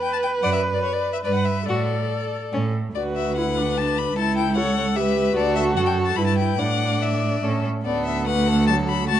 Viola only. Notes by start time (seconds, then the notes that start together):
Already playing: B4
1.24 B4
1.67 A4
2.95 F#4
3.36 E4
3.57 D4
4.18 E4
4.57 A4
4.96 G4
5.36 F#4
6.17 E4
6.59 D4
7.43 C#4
7.85 B3
8.26 A3
8.68 F#3
9.09 A3